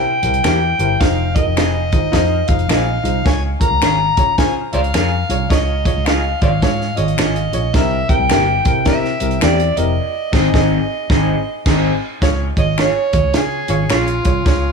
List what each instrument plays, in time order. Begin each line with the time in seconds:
Already playing: fingered electric bass C3, upright piano G4 A#4 C5, harmonica G5
0.23 fingered electric bass C2, upright piano E4 G4 A#4 C5, closed hi-hat
0.34 closed hi-hat
0.44 fingered electric bass E2, clean electric guitar A#3 E4 G4, upright piano E4 G4 A#4 C5, finger snap, snare, closed hi-hat
0.79 fingered electric bass G1, upright piano E4 G4 A#4 C5, closed hi-hat
1.00 fingered electric bass F1, upright piano D#4 F4 G#4 C5, harmonica F5, kick, snare, closed hi-hat
1.35 upright piano D#4 F4 G#4 A#4, harmonica D#5, kick, closed hi-hat
1.46 fingered electric bass F1
1.56 clean electric guitar C4 D#4 G#4, upright piano D#4 F4 G#4 C5, finger snap, snare, closed hi-hat
1.92 fingered electric bass G#1, upright piano D#4 F4 G#4 C5, kick, closed hi-hat
2.12 fingered electric bass F2, upright piano D#4 F4 G#4 C5, kick, snare, closed hi-hat
2.48 fingered electric bass F1, upright piano D#4 F4 G#4 C5, harmonica F5, kick, closed hi-hat
2.59 closed hi-hat
2.68 fingered electric bass A#1, clean electric guitar C4 D#4 G#4, upright piano D#4 F4 G#4 C5, finger snap, snare, closed hi-hat
3.03 fingered electric bass C2, upright piano D#4 F4 G#4 C5, closed hi-hat
3.25 fingered electric bass C#2, upright piano C#4 F4 G#4 C#5, harmonica G#5, kick, snare, closed hi-hat
3.60 upright piano C#4 F4 G#4 A#4, harmonica A#5, kick, closed hi-hat
3.71 fingered electric bass C#2
3.81 fingered electric bass G#1, upright piano C#4 F4 G#4 C#5, clean electric guitar C#4 F4 G#4, finger snap, snare, closed hi-hat
4.17 fingered electric bass C#3, upright piano C#4 F4 G#4 C#5, kick, closed hi-hat
4.38 upright piano C#4 F4 G#4 C5, harmonica G#5, kick, snare, closed hi-hat
4.73 fingered electric bass C#2, upright piano C#4 F4 G#4 C#5, harmonica C5 D5 F5, closed hi-hat
4.84 closed hi-hat
4.94 fingered electric bass F2, clean electric guitar C#4 F4 G#4, upright piano C#4 F4 G#4 A#4, finger snap, snare, closed hi-hat
5.29 fingered electric bass C2, upright piano C#4 F4 G#4 C#5, closed hi-hat
5.50 fingered electric bass C#2, upright piano C#4 F4 G#4 C#5, harmonica D#5, kick, snare, closed hi-hat
5.85 upright piano C#4 F4 G#4 C#5, kick, closed hi-hat
5.96 fingered electric bass C#2
6.06 upright piano C#4 F4 G#4 D#5, clean electric guitar C#4 F4 G#4, harmonica F5, finger snap, snare, closed hi-hat
6.42 fingered electric bass G#1, upright piano C#4 F4 G#4 C#5, harmonica C5 D5 F5, kick, closed hi-hat
6.62 fingered electric bass G#2, upright piano C#4 F4 G#4 C#5, kick, snare, closed hi-hat
6.81 snare
6.96 fingered electric bass G#1, upright piano C#4 F4 G#4 C#5, harmonica D#5, closed hi-hat
7.08 closed hi-hat
7.17 fingered electric bass G#1, upright piano C#4 F4 G#4 C#5, clean electric guitar C#4 F4 G#4, finger snap, snare, closed hi-hat
7.36 closed hi-hat
7.52 fingered electric bass A#1, upright piano C#4 F4 G#4 C#5, closed hi-hat
7.73 fingered electric bass C2, upright piano C4 E4 G4 A#4, harmonica E5, kick, snare, closed hi-hat
8.08 upright piano C4 E4 G4 A#4, harmonica G5, kick, closed hi-hat
8.20 fingered electric bass C2
8.29 fingered electric bass G1, clean electric guitar A#3 E4 G4, upright piano C4 E4 G4 A#4, finger snap, snare, closed hi-hat
8.64 fingered electric bass C3, upright piano C4 E4 G4 A#4, harmonica G5, kick, closed hi-hat
8.85 upright piano C4 E4 G4 A#4, harmonica E5, kick, snare, closed hi-hat
9.04 snare
9.20 fingered electric bass C2, upright piano C4 E4 G4 A#4, closed hi-hat
9.31 closed hi-hat
9.41 fingered electric bass E2, clean electric guitar A#3 E4 G4, upright piano C4 E4 G4 A4, harmonica D5, finger snap, snare, closed hi-hat
9.60 closed hi-hat
9.76 fingered electric bass F1, upright piano C4 E4 G4 A#4, harmonica D#5, closed hi-hat
10.32 fingered electric bass G#1, upright piano C4 D#4 G#4 C5, clean electric guitar C4 D#4 G#4, kick, snare, crash
10.54 fingered electric bass G#1, upright piano C4 D#4 G#4 C5, clean electric guitar C4 D#4 G#4, kick, snare
11.10 fingered electric bass G#1, clean electric guitar C4 D#4 G#4, upright piano C4 D#4 G#4 C5, kick, snare
11.66 fingered electric bass G#1, upright piano C4 D#4 G#4 C5, clean electric guitar C4 D#4 G#4, kick, snare, crash
12.22 fingered electric bass C#2, upright piano C#4 F4 G#4 C#5, kick, snare, closed hi-hat
12.57 fingered electric bass G#1, upright piano C#4 F4 G#4 C#5, harmonica D#5, kick, closed hi-hat
12.78 clean electric guitar C#4 F4 G#4, upright piano C#4 F4 G#4 C#5, harmonica C#5, finger snap, snare, closed hi-hat
13.12 fingered electric bass D#2, upright piano C#4 F4 G#4 C#5, kick, closed hi-hat
13.24 fingered electric bass C#2
13.34 fingered electric bass C#3, upright piano C#4 F4 G#4 C#5, harmonica G#4, snare, closed hi-hat
13.68 fingered electric bass G#1, upright piano C#4 F4 G#4 C#5, closed hi-hat
13.89 fingered electric bass A#1, upright piano C#4 F4 G#4 C#5, clean electric guitar C#4 F4 G#4, harmonica F4, finger snap, snare, closed hi-hat
14.08 closed hi-hat
14.24 fingered electric bass C2, upright piano C#4 F4 G#4 C#5, kick, closed hi-hat
14.45 fingered electric bass C#2, upright piano C#4 F4 G#4 C#5, kick, snare, closed hi-hat